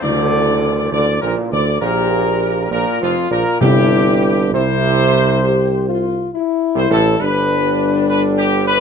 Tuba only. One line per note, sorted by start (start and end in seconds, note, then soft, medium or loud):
0.02 0.88 D2 loud
0.92 1.20 D2 medium
1.22 1.36 A#1 medium
1.52 1.79 D2 medium
1.82 2.67 A#1 medium
2.71 2.84 A#1 medium
3.01 3.14 F1 medium
3.31 3.44 A#1 medium
3.60 4.54 G1 loud
4.53 6.32 C2 loud
6.76 6.90 C2 loud
6.91 7.18 A1 loud
7.20 8.80 G1 medium